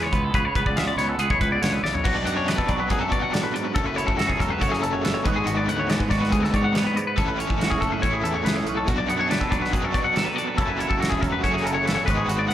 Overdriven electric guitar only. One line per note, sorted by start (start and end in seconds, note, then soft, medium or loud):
2.04 2.88 B2 medium
2.04 2.90 F#3 medium
2.04 2.89 B3 medium
2.04 2.90 D4 loud
2.89 3.74 B2 medium
2.89 3.77 F#3 medium
2.89 3.75 B3 medium
2.89 3.76 D4 medium
3.75 4.59 F#2 medium
3.75 4.60 C#3 medium
3.75 4.61 F#3 loud
3.75 4.61 A3 medium
3.75 4.61 C#4 medium
4.60 5.23 F#2 medium
4.60 5.24 C#3 medium
4.60 5.26 F#3 medium
4.60 5.25 A3 medium
4.60 5.25 C#4 medium
5.24 6.09 G#2 medium
5.24 6.10 D#3 medium
5.24 6.10 G#3 medium
5.24 6.10 B3 medium
5.24 6.09 D#4 medium
6.10 6.96 G#2 medium
6.10 6.96 D#3 medium
6.10 6.95 G#3 medium
6.10 6.95 B3 medium
6.10 6.94 D#4 medium
7.16 8.01 A2 medium
7.16 8.01 E3 medium
7.16 8.04 A3 medium
7.16 8.02 C#4 medium
7.16 8.02 E4 loud
8.02 8.86 A2 medium
8.02 8.86 E3 medium
8.02 8.87 A3 medium
8.02 8.87 C#4 medium
8.02 8.88 E4 medium
8.87 9.71 B2 medium
8.87 9.72 F#3 medium
8.87 9.72 B3 medium
8.87 9.73 D4 loud
9.72 10.56 B2 medium
9.72 10.59 F#3 medium
9.72 10.57 B3 medium
9.72 10.57 D4 medium
10.57 11.42 F#2 medium
10.57 11.42 C#3 medium
10.57 11.44 F#3 loud
10.57 11.43 A3 medium
10.57 11.43 C#4 medium
11.43 12.06 F#2 medium
11.43 12.06 C#3 medium
11.43 12.08 F#3 medium
11.43 12.07 A3 medium
11.43 12.07 C#4 medium
12.06 12.54 G#2 medium
12.06 12.54 D#3 medium
12.06 12.54 G#3 medium
12.06 12.54 B3 medium
12.06 12.54 D#4 medium